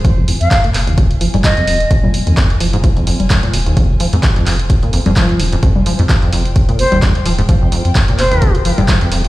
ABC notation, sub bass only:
X:1
M:4/4
L:1/16
Q:"Swing 16ths" 1/4=129
K:Fm
V:1 name="Sub bass" clef=bass
F,,,3 F,, z2 F,,,3 F,,,2 F,,,3 E,,,2 | F,,,3 F,, z2 F,,,3 F,,,2 F,,,3 E,,,2 | F,,,3 F,, z2 F,,,3 F,,,2 F,,,3 E,,,2 | F,,,3 F,, z2 F,,,3 F,,,2 F,,,3 E,,,2 |
F,,,3 F,, z2 F,,,3 F,,,2 F,,,3 E,,,2 |]